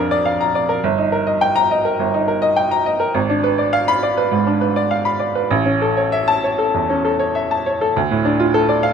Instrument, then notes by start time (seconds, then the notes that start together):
grand piano
Already playing: A#1 F2 D4 A#4 D5 F5 A#5
0.11 D5
0.25 F5
0.41 A#5
0.55 D5
0.69 A#4
0.84 G1
0.98 D#4
1.12 A#4
1.27 D#5
1.41 G5
1.56 A#5
1.71 D#5
1.85 A#4
1.99 G1
2.14 D#4
2.28 A#4
2.42 D#5
2.56 G5
2.71 A#5
2.86 D#5
3.00 A#4
3.15 G#1
3.29 D4
3.44 B4
3.58 D5
3.73 F5
3.88 B5
4.03 D5
4.17 B4
4.32 G#2
4.47 D4
4.61 B4
4.76 D5
4.91 F5
5.05 B5
5.20 D5
5.35 B4
5.51 A1
5.66 C#4
5.82 A4
5.97 C#5
6.12 E5
6.28 A5
6.44 C#5
6.59 A4
6.74 E2
6.90 C#4
7.05 A4
7.19 C#5
7.35 E5
7.51 A5
7.66 C#5
7.81 A4
7.96 D2
8.11 A2
8.25 D4
8.40 F4
8.54 A4
8.69 D5
8.83 F5